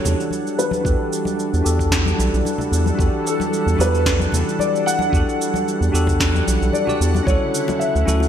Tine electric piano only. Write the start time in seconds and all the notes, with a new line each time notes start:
Already playing: D4 F#4 G4 A4
0.81 D4 F#4
0.86 G4 A4
1.62 D4 F#4 G4 A4
2.95 D4 F#4
2.99 G4 A4
3.77 D4 F#4 G4 A4
5.10 D4 F#4
5.15 G4 A4
5.92 D4 F#4 G4 A4
6.86 D4 F#4 G4 D5
7.23 C#4 E4
7.28 F#4 A4
8.06 C#4 E4 F#4 A4